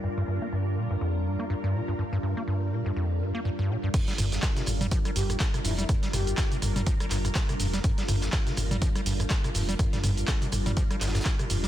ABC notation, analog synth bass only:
X:1
M:4/4
L:1/8
Q:"Swing 16ths" 1/4=123
K:C
V:1 name="Analog synth bass" clef=bass
z8 | z8 | z G,,, z G,,, z G,,, z F,,, | z G,,, z G,,, z G,,, z F,,, |
z G,,, z G,,, z G,,, z F,,, | z G,,, z G,,, z G,,, z F,,, |]